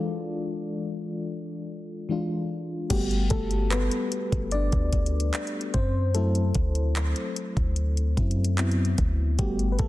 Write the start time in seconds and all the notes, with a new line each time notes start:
Already playing: E3 G#3 D4 F4 A4 D5
2.09 E3 G#3 D4 F4
2.90 G1 G3 A3 B3 F#4 G4, kick, closed hi-hat, crash
3.11 closed hi-hat
3.30 G1 A3 A4, kick, closed hi-hat
3.51 closed hi-hat
3.71 B3 B4, clap, closed hi-hat
3.91 closed hi-hat
4.12 closed hi-hat
4.32 G1, kick, closed hi-hat
4.51 D4 D5, closed hi-hat
4.72 D2, kick, closed hi-hat
4.93 kick, closed hi-hat
5.06 closed hi-hat
5.20 closed hi-hat
5.34 clap, closed hi-hat
5.47 closed hi-hat
5.61 closed hi-hat
5.74 F#2 C4 C5, kick, closed hi-hat
6.14 F#3 A3 C4 E4 A4, closed hi-hat
6.35 closed hi-hat
6.55 D2, kick, closed hi-hat
6.75 closed hi-hat
6.96 clap, closed hi-hat
7.16 closed hi-hat
7.36 closed hi-hat
7.57 D2, kick, closed hi-hat
7.76 closed hi-hat
7.97 closed hi-hat
8.17 F#2 F#3 C4 E4, kick, closed hi-hat
8.31 closed hi-hat
8.44 closed hi-hat
8.58 F#3 B3 C4 E4, clap, closed hi-hat
8.71 closed hi-hat
8.85 closed hi-hat
8.98 D2, kick, closed hi-hat
9.39 G1 G3 A3 B3 F#4 G4, kick, closed hi-hat
9.59 closed hi-hat
9.72 B4
9.79 G1 A3 A4, kick, closed hi-hat